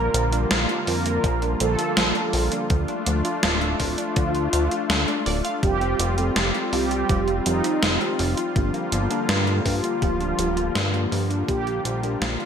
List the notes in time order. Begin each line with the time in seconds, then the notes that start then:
Already playing: D3 F3 G3 A#3 F4 A#4
0.14 A#1 F3, closed hi-hat
0.33 D4, closed hi-hat
0.51 A#1 F3, snare, closed hi-hat
0.69 F4, closed hi-hat
0.87 F2 F3 A#4, open hi-hat
1.06 A#3, closed hi-hat
1.24 A#1 F3, kick, closed hi-hat
1.42 D4, closed hi-hat
1.60 A#1 F3 A4, closed hi-hat
1.79 F4, closed hi-hat
1.97 A#1 F3, snare, closed hi-hat
2.15 A#3, closed hi-hat
2.33 A#1 F3, open hi-hat
2.52 D4, closed hi-hat
2.70 D2 F3 A3 D4, kick, closed hi-hat
2.88 D4, closed hi-hat
3.06 D2 F3, closed hi-hat
3.25 F4, closed hi-hat
3.43 D1 F3, snare, closed hi-hat
3.61 A4, closed hi-hat
3.80 D1 F3 F4, kick, open hi-hat
3.98 D4, closed hi-hat
4.16 D2 F3, kick, closed hi-hat
4.35 F4, closed hi-hat
4.53 D2 F5, closed hi-hat
4.71 F4, closed hi-hat
4.90 D2 D4, snare, closed hi-hat
5.08 D4, closed hi-hat
5.26 D1 D5, open hi-hat
5.45 F5, closed hi-hat
5.63 F1 F3 G3 C4 F4 G4, kick, closed hi-hat
5.81 C4, closed hi-hat
5.99 F1 F3, closed hi-hat
6.18 G3 C4 F4 A4, closed hi-hat
6.36 F1 F3, snare, closed hi-hat
6.54 G4, closed hi-hat
6.73 C2 F3 G3 C4 F4 G4, open hi-hat
6.91 C4, closed hi-hat
7.09 F1 F3 G3 C4 F4 G4, kick, closed hi-hat
7.28 F4, closed hi-hat
7.46 F1 F3 G3 C4 D#4 F4 G4, closed hi-hat
7.64 G4, closed hi-hat
7.83 F1 F3, snare, closed hi-hat
8.01 G3 C4 F4 G4, closed hi-hat
8.19 F1 F3, open hi-hat
8.37 F4, closed hi-hat
8.55 G1 D3 F3 G3 A#3 D4 F4 G4, kick, closed hi-hat
8.74 A#3, closed hi-hat
8.92 G1 F3, closed hi-hat
9.11 A#3 D4 F4 A4, closed hi-hat
9.29 G2 F3, snare, closed hi-hat
9.47 F4, closed hi-hat
9.65 G2 F3 A#3 D4 F4 G4, kick, open hi-hat
9.84 A#3, closed hi-hat
10.02 D1 F3 A#3 D4 F4 G4, kick, closed hi-hat
10.20 D4, closed hi-hat
10.39 D1 F3 A#3 D4 F4 G4, closed hi-hat
10.57 F4, closed hi-hat
10.75 G2 F3, snare, closed hi-hat
10.93 A#3 D4 F4 G4, closed hi-hat
11.12 G2 F3, open hi-hat
11.30 D4, closed hi-hat
11.48 A#1 F3 G3 A#3 D4 F4 G4, kick, closed hi-hat
11.67 A#3, closed hi-hat
11.85 A#1 F3, closed hi-hat
12.03 A#3 D4 F4 A#4, closed hi-hat
12.21 A#1 F3, snare, closed hi-hat
12.40 F4, closed hi-hat